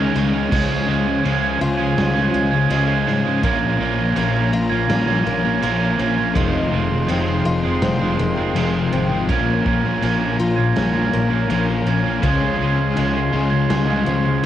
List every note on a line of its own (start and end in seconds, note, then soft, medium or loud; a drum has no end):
0.00 0.12 C#2 medium
0.00 0.13 C#3 loud
0.00 0.50 C#3 medium
0.00 0.52 D#3 medium
0.00 0.14 G#3 medium
0.00 0.34 G#3 loud
0.00 0.49 G#3 medium
0.00 0.15 C#4 medium
0.00 0.32 C#4 loud
0.00 0.33 C#4 medium
0.00 0.49 C#4 medium
0.00 0.52 C#4 medium
0.00 0.16 D#4 medium
0.00 0.33 G#4 medium
0.00 0.33 D#5 medium
0.00 0.33 G#5 medium
0.14 0.51 C#2 medium
0.14 0.49 C#3 medium
0.14 0.51 G#3 medium
0.14 0.34 G#3 medium
0.14 0.33 C#4 medium
0.14 0.31 D#4 medium
0.14 snare soft
0.32 0.51 G#3 medium
0.32 0.50 C#4 medium
0.32 0.49 D#4 medium
0.50 0.85 C#2 loud
0.50 0.86 C#3 medium
0.50 0.88 F3 medium
0.50 2.33 G#3 medium
0.50 0.88 G#3 loud
0.50 3.40 C#4 medium
0.50 0.90 C#4 loud
0.50 3.40 C5 medium
0.50 9.24 F5 medium
0.50 3.40 G#5 medium
0.50 kick loud
0.50 crash loud
0.50 crash medium
0.87 1.22 C#2 medium
0.87 1.22 C#3 medium
0.87 1.24 F3 medium
0.87 1.24 G#3 medium
0.87 1.26 C#4 loud
1.06 1.25 G#3 medium
1.06 1.27 C#4 medium
1.23 1.58 C#2 medium
1.23 1.59 C#3 loud
1.23 1.44 F3 loud
1.23 1.42 G#3 medium
1.23 1.41 C#4 medium
1.23 crash medium
1.41 1.60 F3 medium
1.41 1.60 G#3 medium
1.41 1.61 C#4 medium
1.60 1.94 C#2 medium
1.60 1.96 C#3 medium
1.60 1.79 G#3 medium
1.60 1.78 C#4 medium
1.60 4.53 F4 medium
1.60 muted overdriven electric guitar stroke soft
1.78 2.17 F3 medium
1.78 2.15 G#3 medium
1.78 2.12 C#4 medium
1.78 muted distorted electric guitar stroke medium
1.97 2.31 C#2 medium
1.97 2.32 C#3 medium
1.97 2.16 G#3 medium
1.97 2.14 C#4 medium
1.97 snare loud
1.97 crash medium
2.14 2.54 F3 medium
2.14 2.51 G#3 medium
2.14 2.49 C#4 medium
2.34 2.68 C#2 loud
2.34 2.68 C#3 medium
2.34 2.69 G#3 medium
2.34 2.52 G#3 medium
2.34 2.51 C#4 medium
2.50 2.69 F3 medium
2.50 2.70 G#3 medium
2.50 2.71 C#4 medium
2.50 muted distorted electric guitar stroke medium
2.68 3.04 C#2 medium
2.68 3.04 C#3 loud
2.68 2.90 F3 loud
2.68 3.43 G#3 medium
2.68 2.88 G#3 loud
2.68 2.86 C#4 loud
2.68 crash medium
2.87 3.06 F3 medium
2.87 3.06 G#3 medium
2.87 3.07 C#4 medium
3.05 3.41 G#2 medium
3.05 3.40 C#3 medium
3.05 3.27 F3 medium
3.05 3.25 G#3 medium
3.05 3.23 C#4 medium
3.05 snare soft
3.24 3.43 F3 medium
3.24 3.42 G#3 medium
3.24 3.41 C#4 medium
3.42 3.77 A#1 loud
3.42 3.78 A#2 loud
3.42 3.79 F3 loud
3.42 5.25 A#3 medium
3.42 3.80 A#3 loud
3.42 6.33 C#4 medium
3.42 3.81 C#4 loud
3.42 6.32 A#4 medium
3.42 6.32 A#5 medium
3.42 kick loud
3.42 crash medium
3.79 4.14 A#1 medium
3.79 4.14 A#2 medium
3.79 4.16 F3 medium
3.79 4.16 A#3 loud
3.79 4.17 C#4 medium
3.98 4.17 F3 medium
3.98 4.18 A#3 medium
4.15 4.85 A#1 loud
4.15 4.51 A#2 loud
4.15 4.36 F3 loud
4.15 4.33 A#3 loud
4.15 4.89 C#4 medium
4.15 4.31 C#4 loud
4.15 crash medium
4.32 4.52 F3 medium
4.32 4.51 A#3 medium
4.32 4.52 C#4 medium
4.52 4.87 A#2 medium
4.52 4.72 F3 medium
4.52 4.70 A#3 medium
4.52 6.39 F4 medium
4.52 muted overdriven electric guitar stroke medium
4.69 5.09 F3 medium
4.69 5.07 A#3 medium
4.69 5.05 C#4 medium
4.69 muted distorted electric guitar stroke medium
4.88 5.23 A#1 loud
4.88 5.24 A#2 medium
4.88 5.09 F3 medium
4.88 5.06 A#3 medium
4.88 5.98 C#4 medium
4.88 snare loud
4.88 crash medium
5.06 5.45 F3 medium
5.06 5.43 A#3 medium
5.06 5.42 C#4 medium
5.25 5.60 A#1 loud
5.25 5.61 A#2 medium
5.25 5.45 F3 medium
5.25 5.62 A#3 medium
5.25 5.43 A#3 loud
5.43 5.62 F3 medium
5.43 5.63 A#3 medium
5.43 5.63 C#4 medium
5.43 muted distorted electric guitar stroke medium
5.61 5.97 A#1 loud
5.61 5.97 A#2 loud
5.61 5.83 F3 loud
5.61 6.36 A#3 medium
5.61 5.80 A#3 loud
5.61 5.78 C#4 loud
5.61 crash medium
5.79 5.99 F3 medium
5.79 5.99 A#3 medium
5.79 6.00 C#4 medium
5.98 6.33 A#1 loud
5.98 6.33 A#2 medium
5.98 6.19 F3 medium
5.98 6.17 A#3 medium
5.98 6.36 C#4 medium
5.98 6.15 C#4 medium
6.16 6.35 F3 medium
6.16 6.34 A#3 medium
6.16 6.33 C#4 medium
6.34 6.69 F1 loud
6.34 7.06 F2 loud
6.34 6.69 C3 loud
6.34 8.18 D#3 medium
6.34 6.71 F3 loud
6.34 6.71 G#3 loud
6.34 6.73 C4 loud
6.34 9.25 D#4 medium
6.34 9.25 G#4 medium
6.34 9.25 C6 medium
6.34 kick loud
6.34 crash medium
6.71 7.06 F1 loud
6.71 7.07 C3 medium
6.71 7.09 F3 medium
6.71 7.09 G#3 medium
6.71 7.10 C4 loud
6.90 7.09 C3 medium
6.90 7.10 F3 medium
7.07 7.43 F1 loud
7.07 7.63 F2 loud
7.07 7.44 C3 medium
7.07 7.29 F3 loud
7.07 7.27 G#3 loud
7.07 7.81 C4 medium
7.07 7.25 C4 loud
7.07 crash medium
7.26 7.45 F3 medium
7.26 7.45 G#3 medium
7.26 7.45 C4 medium
7.44 7.79 F1 medium
7.44 7.80 F2 medium
7.44 7.63 C3 medium
7.44 7.64 F3 medium
7.44 10.39 F4 medium
7.44 muted overdriven electric guitar stroke medium
7.63 8.02 F3 medium
7.63 8.00 G#3 medium
7.63 7.99 C4 medium
7.63 muted distorted electric guitar stroke medium
7.81 8.16 F1 loud
7.81 8.17 F2 medium
7.81 8.02 C3 medium
7.81 8.00 F3 medium
7.81 8.91 C4 medium
7.81 snare loud
7.81 crash medium
8.00 8.19 C3 medium
8.00 8.39 F3 medium
8.00 8.37 G#3 medium
8.00 8.35 C4 medium
8.18 8.53 F1 loud
8.18 8.54 F2 medium
8.18 8.37 C3 medium
8.18 9.29 D#3 medium
8.18 8.37 F3 medium
8.36 8.56 F3 medium
8.36 8.55 G#3 medium
8.36 8.56 C4 medium
8.36 muted distorted electric guitar stroke medium
8.54 8.90 F1 medium
8.54 9.10 F2 loud
8.54 8.90 C3 loud
8.54 8.76 F3 loud
8.54 9.29 G#3 medium
8.54 8.73 G#3 loud
8.54 8.71 C4 loud
8.54 crash medium
8.73 8.92 F3 medium
8.73 8.92 G#3 medium
8.73 8.93 C4 medium
8.91 9.26 G#1 medium
8.91 9.26 C3 medium
8.91 9.12 F3 medium
8.91 9.10 G#3 medium
8.91 9.29 C4 medium
8.91 9.08 C4 medium
9.09 9.28 C3 medium
9.09 9.28 F3 medium
9.09 9.27 G#3 medium
9.09 9.26 C4 medium
9.28 9.63 A#1 loud
9.28 9.63 A#2 loud
9.28 9.65 F3 loud
9.28 11.12 A#3 medium
9.28 9.65 A#3 loud
9.28 12.20 C#4 medium
9.28 9.67 C#4 loud
9.28 12.20 A#4 medium
9.28 14.46 F5 medium
9.28 12.20 A#5 medium
9.28 kick loud
9.28 crash medium
9.64 9.99 A#1 medium
9.64 10.00 A#2 medium
9.64 10.02 F3 medium
9.64 10.02 A#3 loud
9.64 10.04 C#4 loud
9.64 kick medium
9.84 10.03 F3 medium
9.84 10.04 A#3 medium
10.01 10.72 A#1 medium
10.01 10.37 A#2 medium
10.01 10.22 F3 loud
10.01 10.20 A#3 loud
10.01 10.76 C#4 medium
10.01 10.19 C#4 loud
10.01 crash medium
10.19 10.38 F3 medium
10.19 10.38 A#3 medium
10.19 10.39 C#4 medium
10.38 10.74 A#2 medium
10.38 10.58 F3 medium
10.38 10.56 A#3 medium
10.38 13.90 F4 medium
10.38 muted overdriven electric guitar stroke soft
10.56 10.96 F3 medium
10.56 10.94 A#3 medium
10.56 10.93 C#4 medium
10.56 muted distorted electric guitar stroke soft
10.75 11.10 A#1 loud
10.75 11.11 A#2 medium
10.75 10.96 F3 medium
10.75 10.93 A#3 medium
10.75 11.86 C#4 medium
10.75 snare loud
10.75 crash medium
10.93 11.32 F3 medium
10.93 11.30 A#3 medium
10.93 11.29 C#4 medium
11.12 11.47 A#1 medium
11.12 11.48 A#2 medium
11.12 11.31 F3 medium
11.12 11.49 A#3 medium
11.12 11.30 A#3 medium
11.29 11.49 F3 medium
11.29 11.49 A#3 medium
11.29 11.51 C#4 medium
11.29 muted distorted electric guitar stroke medium
11.48 11.83 A#1 loud
11.48 11.84 A#2 medium
11.48 11.70 F3 loud
11.48 12.23 A#3 medium
11.48 11.67 A#3 loud
11.48 11.66 C#4 loud
11.48 crash medium
11.66 11.86 F3 medium
11.66 11.86 A#3 medium
11.66 11.88 C#4 medium
11.85 12.20 A#1 medium
11.85 12.20 A#2 medium
11.85 12.07 F3 medium
11.85 12.05 A#3 medium
11.85 14.46 C#4 medium
11.85 12.03 C#4 medium
12.04 12.23 F3 medium
12.04 12.21 A#3 medium
12.04 12.25 C#4 medium
12.22 12.57 C#2 loud
12.22 12.58 C#3 loud
12.22 13.31 C#3 medium
12.22 14.06 F3 medium
12.22 12.60 F3 loud
12.22 13.31 G#3 loud
12.22 12.61 G#3 loud
12.22 14.46 C#4 medium
12.22 13.32 C#4 loud
12.22 12.62 C#4 loud
12.22 14.46 G#4 medium
12.22 14.46 C6 medium
12.22 kick loud
12.22 crash medium
12.59 12.94 C#2 medium
12.59 12.95 C#3 medium
12.59 12.97 F3 medium
12.59 12.97 G#3 medium
12.59 12.99 C#4 medium
12.78 12.96 G#3 medium
12.78 12.98 C#4 medium
12.96 13.31 C#2 medium
12.96 13.32 C#3 medium
12.96 13.17 F3 medium
12.96 13.69 G#3 medium
12.96 13.15 G#3 loud
12.96 13.14 C#4 loud
12.96 crash medium
13.14 13.34 F3 medium
13.14 13.33 G#3 medium
13.14 13.34 C#4 medium
13.33 13.67 C#2 medium
13.33 13.69 C#3 medium
13.33 14.46 C#3 medium
13.33 14.46 G#3 medium
13.33 13.52 G#3 medium
13.33 14.46 C#4 medium
13.33 13.51 C#4 medium
13.33 muted overdriven electric guitar stroke medium
13.50 13.90 F3 medium
13.50 13.88 G#3 medium
13.50 13.86 C#4 medium
13.50 muted distorted electric guitar stroke medium
13.70 14.04 C#2 loud
13.70 14.05 C#3 medium
13.70 14.46 G#3 medium
13.70 13.90 G#3 medium
13.70 13.87 C#4 medium
13.70 snare loud
13.70 crash medium
13.88 14.27 F3 medium
13.88 14.24 G#3 medium
13.88 14.23 C#4 medium
14.06 14.41 C#2 loud
14.06 14.42 C#3 medium
14.06 14.43 F3 medium
14.06 14.25 G#3 medium
14.06 14.24 C#4 medium
14.24 14.43 F3 medium
14.24 14.43 G#3 medium
14.24 14.45 C#4 medium
14.24 muted distorted electric guitar stroke medium
14.42 14.46 C#3 medium